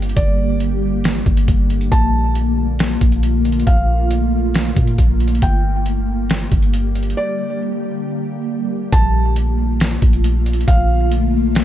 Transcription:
Already playing: G1 D3 G3 A#3 G4
0.02 closed hi-hat
0.09 closed hi-hat
0.16 G1 D5, kick, closed hi-hat
0.60 closed hi-hat
1.04 snare, closed hi-hat
1.26 G1, kick, closed hi-hat
1.37 closed hi-hat
1.48 G1, kick, closed hi-hat
1.70 closed hi-hat
1.81 closed hi-hat
1.92 A#1 A3 F4 A5, kick, closed hi-hat
2.35 closed hi-hat
2.79 snare, closed hi-hat
3.01 A#1, kick, closed hi-hat
3.12 closed hi-hat
3.23 closed hi-hat
3.45 closed hi-hat
3.52 closed hi-hat
3.60 closed hi-hat
3.67 A#1 F5, kick, closed hi-hat
4.11 closed hi-hat
4.54 snare, closed hi-hat
4.76 A#2, kick, closed hi-hat
4.87 closed hi-hat
4.98 A#1, kick, closed hi-hat
5.20 closed hi-hat
5.28 closed hi-hat
5.35 closed hi-hat
5.42 G1 D3 G3 G4 G5, kick, closed hi-hat
5.86 closed hi-hat
6.30 snare, closed hi-hat
6.52 G1, kick, closed hi-hat
6.63 closed hi-hat
6.74 closed hi-hat
6.95 closed hi-hat
7.03 closed hi-hat
7.10 closed hi-hat
7.17 D5
8.92 A#1 D3 A3 A#3 F4 A5, kick, closed hi-hat
9.36 closed hi-hat
9.80 snare, closed hi-hat
10.02 A#1, kick, closed hi-hat
10.13 closed hi-hat
10.24 closed hi-hat
10.46 closed hi-hat
10.53 closed hi-hat
10.61 closed hi-hat
10.68 A#1 F5, kick, closed hi-hat
11.12 closed hi-hat
11.55 snare, closed hi-hat

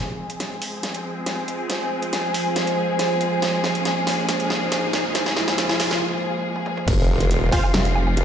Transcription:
Already playing: F3 G#3 C4 F4 G#4, riser
0.25 G#5
0.30 closed hi-hat
0.40 snare, closed hi-hat
0.57 C5
0.62 open hi-hat
0.83 snare, closed hi-hat
0.94 closed hi-hat
1.26 snare, closed hi-hat
1.48 closed hi-hat
1.70 snare, closed hi-hat
2.02 closed hi-hat
2.13 snare, closed hi-hat
2.34 open hi-hat
2.56 snare, closed hi-hat
2.67 closed hi-hat
2.99 snare, closed hi-hat
3.21 closed hi-hat
3.42 A#3, snare, closed hi-hat
3.64 snare
3.75 closed hi-hat
3.85 snare, closed hi-hat
4.07 snare, open hi-hat
4.29 snare, closed hi-hat
4.40 closed hi-hat
4.50 snare
4.72 snare, closed hi-hat
4.93 snare, closed hi-hat
5.15 snare, closed hi-hat
5.26 snare
5.37 snare
5.48 snare, closed hi-hat
5.58 snare, closed hi-hat
5.69 snare
5.80 snare, open hi-hat
5.91 snare
6.56 high tom
6.66 mid tom
6.77 mid tom
6.88 F1 C3 F3 G#3 F4, kick, closed hi-hat, crash, impact
7.20 closed hi-hat
7.31 E1, closed hi-hat
7.52 F4 C5 F5, kick, open hi-hat, low woodblock
7.64 low woodblock
7.74 F1, snare, closed hi-hat
7.85 closed hi-hat
7.96 low woodblock
8.07 low woodblock
8.17 F1, closed hi-hat

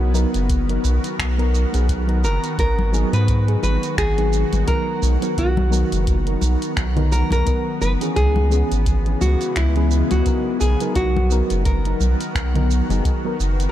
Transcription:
Already playing: B1 D#3 F#3 B3 D#4 F#4 A#4
0.14 F#3 B3 D#4 A#4, shaker
0.34 F#1, closed hi-hat, shaker
0.49 kick, closed hi-hat, shaker
0.68 F#3 B3 D#4 A#4, closed hi-hat
0.84 B1, shaker
1.04 closed hi-hat, shaker
1.19 B1, finger snap, kick, closed hi-hat, shaker
1.38 F#3 B3 D#4 A#4, closed hi-hat
1.55 shaker
1.72 B1 F#3 B3 D#4 G#4, closed hi-hat, shaker
1.89 kick, closed hi-hat, shaker
2.07 F#3 B3 D#4 A#4, closed hi-hat
2.24 F#1 A#4, shaker
2.44 closed hi-hat, shaker
2.58 G#1 G#3 A#4, kick, closed hi-hat, shaker
2.79 high conga
2.92 F#3 B3 D#4 G#4, shaker
3.13 G#2 B4, closed hi-hat, shaker
3.28 kick, closed hi-hat, shaker
3.46 F#3 B3 D#4 G#4, closed hi-hat
3.63 G#1 B4, high conga, shaker
3.83 closed hi-hat, shaker
3.98 G#1 G#4, finger snap, kick, closed hi-hat, shaker
4.17 F#3 B3 D#4 G#4, closed hi-hat
4.33 shaker
4.52 G#1, closed hi-hat, high conga, shaker
4.67 F#3 B3 D#4 A#4, kick, closed hi-hat, shaker
5.03 B1 B3 A#5, shaker
5.21 F#3 B3 D#4 A#4, closed hi-hat, shaker
5.38 B1 F#4, kick, closed hi-hat, shaker
5.57 high conga
5.70 F#3 B3 D#4 A#4, shaker
5.92 F#1, closed hi-hat, shaker
6.07 kick, closed hi-hat, shaker
6.25 F#3 B3 D#4 A#4, closed hi-hat
6.41 B1, high conga, shaker
6.62 closed hi-hat, shaker
6.77 B1, finger snap, kick, closed hi-hat, shaker
6.95 F#3 B3 D#4 A#4, closed hi-hat, low conga
7.12 A#4, shaker
7.31 B1 A#4, closed hi-hat, high conga, shaker
7.45 F#3 B3 D#4 A#4, kick, closed hi-hat, shaker
7.81 F#1 B4, shaker
8.01 E3 B3 C#4 G#4, closed hi-hat, shaker
8.16 C#2 C#3 E3 G#3 G#4, kick, closed hi-hat, shaker
8.36 high conga
8.50 E3 B3 C#4 G#4, shaker
8.72 G#1, closed hi-hat, shaker
8.86 kick, closed hi-hat, shaker
9.06 E3 B3 C#4 G#4, closed hi-hat
9.21 C#2 F#4, high conga, shaker
9.41 closed hi-hat, shaker
9.56 C#2 E4, finger snap, kick, closed hi-hat, shaker
9.76 E3 B3 C#4 G#4, closed hi-hat
9.91 shaker
10.11 C#2 F#4, closed hi-hat, high conga, shaker
10.25 F#3 B3 D#4 A#4, kick, closed hi-hat, shaker
10.61 B1 D#3 F#4 G#4 A#4, shaker
10.80 F#3 B3 D#4 A#4, closed hi-hat, shaker
10.96 B1 F#4, kick, closed hi-hat, shaker
11.16 high conga
11.30 F#3 B3 D#4 A#4, shaker
11.50 F#1, closed hi-hat, shaker
11.65 A#4, kick, closed hi-hat, shaker
11.85 F#3 B3 D#4 A#4, closed hi-hat
12.01 B1, high conga, shaker
12.21 closed hi-hat, shaker
12.35 B1, finger snap, kick, closed hi-hat, shaker
12.54 F#3 B3 D#4 A#4, closed hi-hat, low conga
12.71 shaker
12.89 F#1 F#3 B3 D#4 G#4, closed hi-hat, high conga, shaker
13.05 kick, closed hi-hat, shaker
13.25 F#3 B3 D#4 A#4
13.40 F#1, shaker
13.60 closed hi-hat, shaker

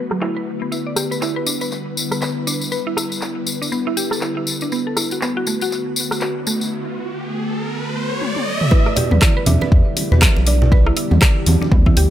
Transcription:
Already playing: D3 A3 B3 F#4 B4
0.11 F#3, cross-stick
0.21 E4, clap
0.37 B4
0.62 B3
0.71 G3 E4, tambourine
0.87 D5
0.96 G4, cross-stick, tambourine
1.11 B4, tambourine
1.21 E4, clap, tambourine
1.36 B4
1.46 D4, tambourine
1.61 B4, tambourine
1.72 clap, tambourine
1.97 tambourine
2.11 B4, cross-stick, tambourine
2.21 B4, clap, tambourine
2.47 D4, tambourine
2.61 tambourine
2.72 B4, tambourine
2.87 E4
2.97 E4, cross-stick, tambourine
3.12 tambourine
3.21 clap, tambourine
3.47 tambourine
3.62 D4, tambourine
3.72 B3, tambourine
3.86 E4, clap
3.97 G4, tambourine
4.11 A4, cross-stick, tambourine
4.21 E4, clap, tambourine
4.37 E4
4.47 tambourine
4.61 D4, tambourine
4.72 D3 A3 B3 F#4, tambourine, riser
4.87 A4
4.97 E4, cross-stick, tambourine
5.11 F#4, tambourine
5.21 B3, clap, tambourine
5.37 F#4
5.47 A3, tambourine
5.61 F#4, tambourine
5.71 clap, tambourine
5.96 tambourine
6.11 F#4, cross-stick, tambourine
6.21 F#4, clap, tambourine
6.47 A3, tambourine
6.61 tambourine
6.71 A4
8.22 high tom
8.36 high tom
8.61 mid tom
8.71 D3 G3 B3 E4 G4 B4, kick, muted conga
8.86 D5, cross-stick
8.96 G4 D5, open hi-hat, low conga
9.11 E2 B4, mid tom, high conga
9.22 E4, kick, cross-stick, clap, muted conga
9.37 B4
9.46 E2 D4 E5, open hi-hat, high conga, low conga
9.61 B4, muted conga, high conga
9.72 E2, kick
9.97 open hi-hat, muted conga
10.12 E2 B4, low conga
10.22 B4, kick, cross-stick, clap, mid tom
10.36 B1, muted conga
10.47 D4 D5, open hi-hat
10.62 low conga
10.72 B4, kick, muted conga
10.87 E4, cross-stick
10.97 E4, open hi-hat
11.11 E2, mid tom, high conga
11.22 kick, cross-stick, clap, muted conga
11.46 E2, open hi-hat, high conga
11.61 D4, muted conga, high conga
11.71 D2 B3, kick, mid tom
11.86 E4, kick, high conga
11.97 D2 G4, open hi-hat, muted conga

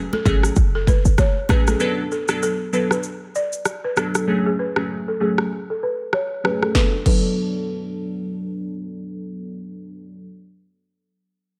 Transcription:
Already playing: downlifter
0.13 A4, high conga
0.25 G#1 F#3 A3 C#4 G#4, kick, high conga, shaker
0.43 cross-stick, shaker
0.56 F#1, kick, shaker
0.75 A4
0.87 B4, kick, high conga, shaker
1.05 F#1, shaker
1.18 C#5, kick, cross-stick, high conga, low conga, shaker
1.49 A1 F#3 A3 C#4 G#4 B4, cross-stick, high conga, low conga, shaker
1.67 A4, cross-stick, high conga, shaker
1.80 F#3 B3 D4 A4 B4, shaker
2.11 A4, shaker
2.28 F#3 B3 D4 A4, cross-stick, shaker
2.43 A4, shaker
2.73 F#3 B3 D4 A4 B4, shaker
2.91 B4, cross-stick, shaker
3.03 shaker
3.35 D5, shaker
3.53 shaker
3.65 cross-stick, shaker
3.84 B4
3.96 F#3 B3 D4 A4, cross-stick, shaker
4.15 cross-stick, shaker
4.27 F#3 A3 C#4 G#4
4.46 G#4
4.59 B4
4.76 F#3 A3 C#4 G#4, cross-stick
5.08 A4
5.20 F#3 A3 C#4 G#4
5.38 cross-stick
5.70 A4
5.83 B4
6.13 C#5, cross-stick
6.44 F#3 A3 C#4 G#4 B4, cross-stick
6.63 A4, cross-stick
6.74 F#3 B3 D4 A4 B4, kick, snare
7.05 F#3 B3 D4 A4 B4, kick, crash

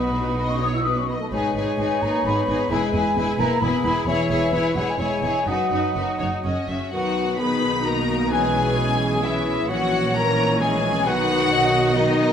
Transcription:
Already playing: B1 B2 B3 D#4 F#4 B4 D#5 B5
0.38 D#5
0.49 C#4 C#6
0.60 D#4 C#5 D#6
0.72 E4 E6
0.84 D#4 B4 D#6
0.96 C#4 C#6
1.08 B3 D#5 B5
1.19 A3 A5
1.31 G#1 G#2 G#3 D#4 G#4 B4 C#5 G#5
1.55 G#1 G#2 D#4 G#4 B4
1.78 G#1 G#2 D#4 G#4 B4
2.01 G#1 G#2 A#3 D#4 G#4 B4 A#5
2.24 G#1 G#2 B3 D#4 G#4 B4 B5
2.48 G#1 G#2 D#4 G#4 B4
2.70 E1 E2 G#3 E4 G#4 B4 G#5
2.93 E1 E2 E4 G#4 B4
3.16 E1 E2 E4 G#4 B4
3.38 E1 E2 A#3 E4 G#4 B4 A#5
3.61 E1 E2 B3 E4 G#4 B4 B5
3.84 E1 E2 E4 G#4 B4
4.07 E1 E2 E3 E4 G#4 C#5 E5
4.29 E1 E2 E4 G#4 C#5
4.52 E1 E2 E4 G#4 B4 C#5
4.75 E1 E2 F#3 E4 G#4 C#5 F#5
4.87 G#3 G#5
4.98 E1 E2 G#3 E4 G#4 C#5 G#5
5.22 E1 E2 E4 G#4 C#5
5.46 F#1 F#2 F#3 D#4 F#4 B4 D#5 F#5
5.71 F#1 F#2 D#4 F#4 B4
5.95 F#1 F#2 D#4 F#4 B4
6.19 F#1 F#2 D#4 F#4 C#5
6.44 F#1 F#2 C#4 F#4 D#5
6.68 F#1 F#2 C#4 F#4 E5
6.91 B1 B2 D#3 F#3 D#4 F#4 B4 F#5
7.38 D#3 B3 D#4 G#4 B4 B5
7.84 A#3 F#4 A#4 A#5
8.31 E3 G#3 C#4 G#4 B4 G#5
8.77 G#4
9.23 E3 C#4 E4 E5
9.69 A#1 A#2 E3 F#3 C#4 F#4 C#5 F#5
10.14 E3 A#3 C#4 A#4 A#5
10.60 G#3 G#4 G#5
11.06 B1 B2 D#3 F#3 D#4 F#4 B4 F#5
11.53 D#5
11.96 D#3 D#4 F#4 D#5

